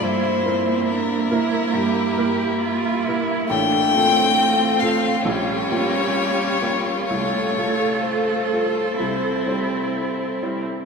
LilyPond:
<<
  \new Staff \with { instrumentName = "Violin" } { \time 4/4 \key f \major \tempo 4 = 68 c''4 bes'2~ bes'8 r8 | g''4. f''8 des''2 | des''4 c''2~ c''8 r8 | }
  \new Staff \with { instrumentName = "Cello" } { \time 4/4 \key f \major e'8 c'8 d'8 e'8 g'4 f'8 e'8 | d'8 c'4. des'2 | a'2.~ a'8 r8 | }
  \new Staff \with { instrumentName = "Grand piano" } { \time 4/4 \key f \major g,8 <bes e' bes'>4 <bes e' bes'>8 g,8 <bes e' bes'>4 <bes e' bes'>8 | a,,8 <c' f' a'>4 <c' f' a'>8 bes,,8 <bes f' g'>4 <bes f' g'>8 | c,8 <a f' a'>4 <a f' a'>8 c,8 <g e' c''>4 <g e' c''>8 | }
  \new Staff \with { instrumentName = "Violin" } { \time 4/4 \key f \major e'1 | f'1~ | f'2 e'2 | }
  \new Staff \with { instrumentName = "Viola" } { \time 4/4 \key f \major bes1 | a2 g2 | a2 c'2 | }
>>